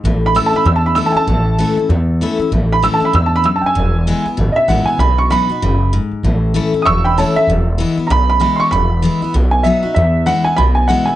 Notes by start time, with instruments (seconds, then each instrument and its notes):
0.04 upright bass A1, steel-string acoustic guitar A2
0.26 upright piano B5
0.35 steel-string acoustic guitar E3 A3 C#4 E4, upright piano E6
0.46 upright piano A5
0.53 steel-string acoustic guitar C#4 E4, upright piano B5, muted upright bass stroke
0.65 upright bass E2, steel-string acoustic guitar E2, upright piano E6
0.76 upright piano A5
0.86 upright piano B5
0.95 steel-string acoustic guitar E3 A3 C#4 E4, upright piano E6
1.06 upright piano A5
1.12 steel-string acoustic guitar E4, upright piano G#5, muted upright bass stroke
1.17 steel-string acoustic guitar C#4, upright piano A5
1.27 upright bass A1, steel-string acoustic guitar A2
1.58 steel-string acoustic guitar E3 A3 C#4 E4
1.76 steel-string acoustic guitar C#4 E4, muted upright bass stroke
1.89 upright bass E2
2.21 steel-string acoustic guitar E3 A3 C#4 E4
2.38 steel-string acoustic guitar C#4 E4, muted upright bass stroke
2.52 upright bass A1, steel-string acoustic guitar A2
2.72 upright piano B5
2.83 steel-string acoustic guitar E3 A3 C#4 E4, upright piano E6
2.94 upright piano A5
3.00 steel-string acoustic guitar C#4 E4, muted upright bass stroke
3.05 upright piano B5
3.13 upright bass E2, steel-string acoustic guitar G#2, upright piano E6
3.26 upright piano A5
3.36 upright piano B5
3.44 steel-string acoustic guitar F#2, upright piano E6
3.56 upright piano A5
3.61 upright piano G5, muted upright bass stroke
3.66 upright piano G#5
3.75 upright bass E1, steel-string acoustic guitar E2
4.07 steel-string acoustic guitar E3 G#3 B3 E4
4.25 steel-string acoustic guitar B3 E4, muted upright bass stroke
4.37 upright bass G#1, steel-string acoustic guitar B2
4.52 upright piano D#5, muted upright bass stroke
4.56 upright piano E5
4.68 upright bass A1, steel-string acoustic guitar E3 G#3 B3 E4, upright piano F#5
4.86 steel-string acoustic guitar B3 E4, upright piano G#5, muted upright bass stroke
4.98 upright bass B1, steel-string acoustic guitar B2, upright piano B5
5.18 upright piano C#6
5.30 steel-string acoustic guitar F#3 B3 D#4 F#4, upright piano B5
5.48 steel-string acoustic guitar D#4 F#4, muted upright bass stroke
5.62 upright bass F#1, steel-string acoustic guitar C#3
5.93 steel-string acoustic guitar G#2
6.11 muted upright bass stroke
6.23 upright bass A1, steel-string acoustic guitar A2
6.54 steel-string acoustic guitar E3 A3 C#4 E4
6.73 steel-string acoustic guitar C#4 E4, muted upright bass stroke
6.82 upright bass E1, upright piano C#6 D#6
6.86 steel-string acoustic guitar E2, upright piano E6
7.04 upright piano G5 B5
7.18 steel-string acoustic guitar E3 A3 C#4 E4, upright piano C#5 A5
7.35 steel-string acoustic guitar C#4, upright piano E5, muted upright bass stroke
7.47 upright bass E1, steel-string acoustic guitar E2
7.78 steel-string acoustic guitar E3 G#3 B3 E4
7.97 steel-string acoustic guitar B3 E4, muted upright bass stroke
8.07 upright bass B1, steel-string acoustic guitar B2, upright piano A#5
8.11 upright piano B5
8.30 upright piano B5
8.40 steel-string acoustic guitar E3 G#3 B3 E4, upright piano B5
8.56 upright piano C6 C#6, muted upright bass stroke
8.71 upright bass E1, steel-string acoustic guitar E2, upright piano B5
9.02 steel-string acoustic guitar E3 G#3 B3 E4
9.21 steel-string acoustic guitar B3 E4, muted upright bass stroke
9.34 upright bass B1, steel-string acoustic guitar B2
9.51 upright piano G#5
9.63 steel-string acoustic guitar F#3 B3 D#4 F#4, upright piano E5
9.83 steel-string acoustic guitar D#4 F#4, muted upright bass stroke
9.94 upright bass E2, steel-string acoustic guitar E2, upright piano E5
10.26 steel-string acoustic guitar E3 G#3 B3 E4, upright piano F#5
10.44 steel-string acoustic guitar B3 E4, upright piano G#5, muted upright bass stroke
10.56 upright bass B1, steel-string acoustic guitar B2, upright piano B5
10.75 upright piano G#5
10.88 steel-string acoustic guitar E3 G#3 B3 E4, upright piano F#5
11.06 steel-string acoustic guitar B3 E4, upright piano G#5, muted upright bass stroke